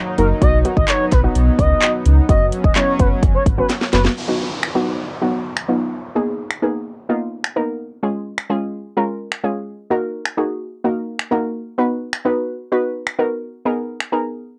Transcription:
Already playing: analog synth pad F#3 A#3 D#4
0.18 sub bass F#1, synth pluck F#3 A#3 D#4 F#4, analog synth lead A#4, closed hi-hat
0.41 sub bass B1, synth pluck F#3 B3 D#4 F#4, analog synth pad B3, analog synth lead D#5, kick, closed hi-hat
0.65 synth pluck F#3 B3 D#4 F#4, closed hi-hat
0.77 sub bass G#1, analog synth lead D#5, kick
0.88 analog synth lead C#5, clap, closed hi-hat
1.12 sub bass B1, analog synth lead B4, kick, clap, closed hi-hat
1.23 synth pluck F#3 B3 D#4 F#4
1.35 sub bass B1, closed hi-hat
1.59 sub bass C#2, analog synth lead D#5, kick, closed hi-hat
1.82 clap, closed hi-hat
2.05 sub bass C#2, closed hi-hat
2.29 sub bass F#1, synth pluck F#3 B3 C#4 F#4, analog synth pad F#3 C#4, analog synth lead D#5, kick, closed hi-hat
2.52 closed hi-hat
2.64 sub bass D#1, analog synth lead D#5, kick
2.76 synth pluck F#3 B3 C#4 E4, analog synth lead C#5, clap, closed hi-hat
2.99 sub bass F#1, synth pluck F#3 B3 C#4 F#4, analog synth lead B4, kick, closed hi-hat
3.23 sub bass F#1, kick, closed hi-hat
3.35 analog synth lead C#5
3.46 sub bass G#1, kick, closed hi-hat
3.58 synth pluck F#3 B3 C#4 F#4, analog synth lead B4
3.70 snare, clap, closed hi-hat
3.81 snare
3.93 sub bass F#1, synth pluck F#3 B3 C#4 F#4, analog synth lead B4, snare, closed hi-hat
4.05 snare
4.16 downlifter
4.28 synth pluck F#3 B3 D#4 F#4
4.63 finger snap
4.75 synth pluck F#3 B3 D#4 F#4
5.22 synth pluck F#3 B3 D#4 F#4
5.57 finger snap
5.69 synth pluck F#3 B3 D#4 F4
6.15 synth pluck A#3 B3 D#4 G#4
6.51 finger snap
6.62 synth pluck A#3 B3 D#4 G#4
7.09 synth pluck A#3 B3 D#4 F4
7.44 finger snap
7.56 synth pluck A#3 B3 D#4 A#4
8.03 synth pluck G#3 C#4 F4 G#4
8.38 finger snap
8.50 synth pluck G#3 C#4 F4 G#4
8.97 synth pluck G#3 C#4 F4 A#4
9.32 finger snap
9.44 synth pluck G#3 C#4 F4 G#4
9.90 synth pluck A#3 D#4 F#4 A#4
10.26 finger snap
10.37 synth pluck A#3 D#4 F#4 G#4
10.84 synth pluck A#3 D#4 F#4 A#4
11.19 finger snap
11.31 synth pluck A#3 D#4 F#4 A#4
11.78 synth pluck B3 D#4 F#4 B4
12.13 finger snap
12.25 synth pluck B3 D#4 F#4 B4
12.72 synth pluck B3 D#4 F#4 B4
13.07 finger snap
13.18 synth pluck B3 D#4 F#4 A#4
13.65 synth pluck B3 D#4 G#4 A#4
14.01 finger snap
14.12 synth pluck B3 D#4 G#4 A#4

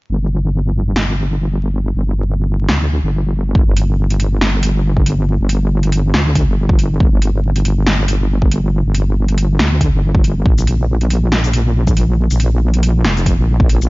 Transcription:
0.10 wobble bass G1
0.96 snare
1.95 wobble bass G1
2.69 wobble bass D2, snare
3.03 wobble bass G1
3.55 wobble bass G1, kick
3.77 closed hi-hat
4.10 closed hi-hat
4.20 closed hi-hat
4.41 snare
4.63 closed hi-hat
4.97 kick
5.06 closed hi-hat
5.40 wobble bass G1
5.49 closed hi-hat
5.83 closed hi-hat
5.92 closed hi-hat
6.14 wobble bass D2, snare
6.35 kick, closed hi-hat
6.48 wobble bass G1
6.69 kick
6.79 closed hi-hat
7.00 wobble bass G1, kick
7.22 closed hi-hat
7.56 closed hi-hat
7.65 closed hi-hat
7.87 snare
8.08 closed hi-hat
8.42 kick
8.52 closed hi-hat
8.85 wobble bass G1
8.95 closed hi-hat
9.28 closed hi-hat
9.38 closed hi-hat
9.59 wobble bass D2, snare
9.81 kick, closed hi-hat
9.93 wobble bass G1
10.15 kick
10.24 closed hi-hat
10.46 wobble bass A#1, kick
10.58 shaker
10.67 closed hi-hat
11.01 closed hi-hat
11.10 closed hi-hat
11.32 snare
11.44 shaker
11.53 closed hi-hat
11.87 kick, shaker
11.97 closed hi-hat
12.30 wobble bass A#1, shaker
12.40 closed hi-hat
12.74 closed hi-hat
12.83 closed hi-hat
13.05 wobble bass F1, snare
13.17 shaker
13.26 kick, closed hi-hat, shaker
13.39 wobble bass A#1
13.60 kick
13.69 closed hi-hat
13.82 shaker

